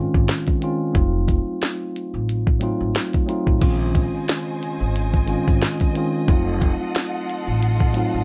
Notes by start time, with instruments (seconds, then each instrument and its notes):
Already playing: tine electric piano D#3 G#3 C4 C#4 F4
0.14 upright bass G#1, kick
0.28 snare, closed hi-hat
0.47 kick, closed hi-hat
0.60 tine electric piano D#3 G#3 C4 C#4 F4, closed hi-hat
0.93 upright bass F1, tine electric piano F#3 A3 C4 D#4 F4, kick, closed hi-hat
1.28 kick, closed hi-hat
1.62 snare, closed hi-hat
1.96 closed hi-hat
2.14 upright bass A1
2.29 closed hi-hat
2.47 kick
2.60 tine electric piano F#3 A3 C4 D#4 F4, closed hi-hat
2.81 upright bass G#1
2.95 snare, closed hi-hat
3.13 kick, closed hi-hat
3.26 tine electric piano F#3 A3 C4 D#4 F4, closed hi-hat
3.47 upright bass A1, kick
3.59 upright bass A#1, string section C#3 C5 D#5 G#5, tine electric piano D#3 G#3 C4 C#4 F4, kick, closed hi-hat, crash
3.95 kick, closed hi-hat
4.28 snare, closed hi-hat
4.63 closed hi-hat
4.81 upright bass G#1
4.96 closed hi-hat
5.14 kick
5.26 tine electric piano D#3 G#3 C4 C#4 F4, closed hi-hat
5.48 upright bass G#1, kick
5.62 snare, closed hi-hat
5.80 kick, closed hi-hat
5.94 tine electric piano D#3 G#3 C4 C#4 F4, closed hi-hat
6.26 upright bass F1, tine electric piano F#3 A3 C4 D#4 F4, string section F4 A4 F#5, kick, closed hi-hat
6.61 kick, closed hi-hat
6.95 snare, closed hi-hat
7.30 closed hi-hat
7.47 upright bass A1
7.63 closed hi-hat
7.80 kick
7.93 tine electric piano F#3 A3 C4 D#4 F4, closed hi-hat
8.14 upright bass G#1